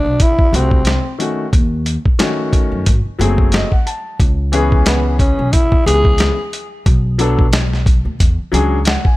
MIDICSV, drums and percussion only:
0, 0, Header, 1, 2, 480
1, 0, Start_track
1, 0, Tempo, 666667
1, 1099, Time_signature, 4, 2, 24, 8
1, 6602, End_track
2, 0, Start_track
2, 0, Title_t, "Drums"
2, 142, Note_on_c, 9, 42, 96
2, 144, Note_on_c, 9, 36, 83
2, 214, Note_off_c, 9, 42, 0
2, 216, Note_off_c, 9, 36, 0
2, 279, Note_on_c, 9, 36, 81
2, 351, Note_off_c, 9, 36, 0
2, 389, Note_on_c, 9, 42, 84
2, 461, Note_off_c, 9, 42, 0
2, 514, Note_on_c, 9, 36, 93
2, 586, Note_off_c, 9, 36, 0
2, 611, Note_on_c, 9, 42, 81
2, 627, Note_on_c, 9, 38, 106
2, 683, Note_off_c, 9, 42, 0
2, 699, Note_off_c, 9, 38, 0
2, 864, Note_on_c, 9, 42, 65
2, 936, Note_off_c, 9, 42, 0
2, 1100, Note_on_c, 9, 36, 110
2, 1103, Note_on_c, 9, 42, 78
2, 1172, Note_off_c, 9, 36, 0
2, 1175, Note_off_c, 9, 42, 0
2, 1340, Note_on_c, 9, 42, 73
2, 1412, Note_off_c, 9, 42, 0
2, 1480, Note_on_c, 9, 36, 86
2, 1552, Note_off_c, 9, 36, 0
2, 1579, Note_on_c, 9, 42, 107
2, 1583, Note_on_c, 9, 38, 123
2, 1651, Note_off_c, 9, 42, 0
2, 1655, Note_off_c, 9, 38, 0
2, 1819, Note_on_c, 9, 36, 89
2, 1822, Note_on_c, 9, 42, 73
2, 1891, Note_off_c, 9, 36, 0
2, 1894, Note_off_c, 9, 42, 0
2, 2062, Note_on_c, 9, 42, 103
2, 2065, Note_on_c, 9, 36, 79
2, 2134, Note_off_c, 9, 42, 0
2, 2137, Note_off_c, 9, 36, 0
2, 2311, Note_on_c, 9, 42, 79
2, 2383, Note_off_c, 9, 42, 0
2, 2435, Note_on_c, 9, 36, 93
2, 2507, Note_off_c, 9, 36, 0
2, 2534, Note_on_c, 9, 42, 81
2, 2549, Note_on_c, 9, 38, 112
2, 2606, Note_off_c, 9, 42, 0
2, 2621, Note_off_c, 9, 38, 0
2, 2677, Note_on_c, 9, 36, 76
2, 2749, Note_off_c, 9, 36, 0
2, 2785, Note_on_c, 9, 42, 63
2, 2857, Note_off_c, 9, 42, 0
2, 3021, Note_on_c, 9, 36, 108
2, 3024, Note_on_c, 9, 42, 79
2, 3093, Note_off_c, 9, 36, 0
2, 3096, Note_off_c, 9, 42, 0
2, 3260, Note_on_c, 9, 42, 82
2, 3332, Note_off_c, 9, 42, 0
2, 3399, Note_on_c, 9, 36, 89
2, 3471, Note_off_c, 9, 36, 0
2, 3498, Note_on_c, 9, 42, 104
2, 3503, Note_on_c, 9, 38, 110
2, 3570, Note_off_c, 9, 42, 0
2, 3575, Note_off_c, 9, 38, 0
2, 3739, Note_on_c, 9, 36, 100
2, 3742, Note_on_c, 9, 42, 67
2, 3811, Note_off_c, 9, 36, 0
2, 3814, Note_off_c, 9, 42, 0
2, 3981, Note_on_c, 9, 42, 98
2, 3984, Note_on_c, 9, 36, 87
2, 4053, Note_off_c, 9, 42, 0
2, 4056, Note_off_c, 9, 36, 0
2, 4118, Note_on_c, 9, 36, 88
2, 4190, Note_off_c, 9, 36, 0
2, 4230, Note_on_c, 9, 42, 93
2, 4302, Note_off_c, 9, 42, 0
2, 4354, Note_on_c, 9, 36, 95
2, 4426, Note_off_c, 9, 36, 0
2, 4451, Note_on_c, 9, 42, 82
2, 4466, Note_on_c, 9, 38, 111
2, 4523, Note_off_c, 9, 42, 0
2, 4538, Note_off_c, 9, 38, 0
2, 4703, Note_on_c, 9, 42, 63
2, 4775, Note_off_c, 9, 42, 0
2, 4940, Note_on_c, 9, 36, 105
2, 4940, Note_on_c, 9, 42, 81
2, 5012, Note_off_c, 9, 36, 0
2, 5012, Note_off_c, 9, 42, 0
2, 5177, Note_on_c, 9, 42, 77
2, 5249, Note_off_c, 9, 42, 0
2, 5319, Note_on_c, 9, 36, 88
2, 5391, Note_off_c, 9, 36, 0
2, 5419, Note_on_c, 9, 42, 99
2, 5424, Note_on_c, 9, 38, 120
2, 5491, Note_off_c, 9, 42, 0
2, 5496, Note_off_c, 9, 38, 0
2, 5569, Note_on_c, 9, 38, 37
2, 5641, Note_off_c, 9, 38, 0
2, 5660, Note_on_c, 9, 36, 97
2, 5665, Note_on_c, 9, 42, 70
2, 5732, Note_off_c, 9, 36, 0
2, 5737, Note_off_c, 9, 42, 0
2, 5905, Note_on_c, 9, 36, 78
2, 5906, Note_on_c, 9, 42, 106
2, 5977, Note_off_c, 9, 36, 0
2, 5978, Note_off_c, 9, 42, 0
2, 6148, Note_on_c, 9, 42, 79
2, 6220, Note_off_c, 9, 42, 0
2, 6374, Note_on_c, 9, 42, 82
2, 6389, Note_on_c, 9, 38, 113
2, 6446, Note_off_c, 9, 42, 0
2, 6461, Note_off_c, 9, 38, 0
2, 6515, Note_on_c, 9, 36, 83
2, 6587, Note_off_c, 9, 36, 0
2, 6602, End_track
0, 0, End_of_file